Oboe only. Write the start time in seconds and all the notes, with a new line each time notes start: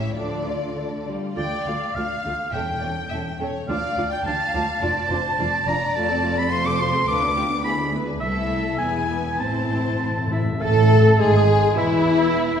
1.37 D5
1.95 F5
2.53 G5
3.68 F5
4.12 G5
4.26 A5
4.81 A5
5.68 A#5
5.95 A5
6.38 B5
6.52 C6
6.67 D6
6.80 C6
7.08 D6
7.64 B5
8.20 E5
8.78 G#5
9.40 A5
10.32 E5
10.62 A5
11.20 G#5
11.78 E5